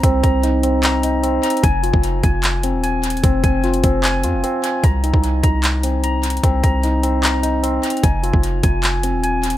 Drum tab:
HH |x-----x-----x-----x-----x-----x-----x-----x-x-x-|x-----x-----x-----x-----x-----x-----x-----x-x-x-|x-----x-----x--x--x-----x-----x-----x-----x-----|x-----x-----x-----x-----x-----x-----x-----x-x-x-|
CP |------------------------x-----------------------|------------------------x-----------------------|------------------------x-----------------------|------------------------x-----------------------|
BD |o-----o-----------------------------------------|o--------o--------o-----------------------------|o-----o-----------o-----------------------------|o--------o--------o-----------------------------|

HH |x-----x-----x-----x-----x-----x-----x-----x-x-x-|x-----x-----x-----x-----x-----x-----x-----x-x---|
CP |------------------------x-----------------------|------------------------x-----------------------|
BD |o-----o-----------------------------------------|o--------o--------o-----------------------------|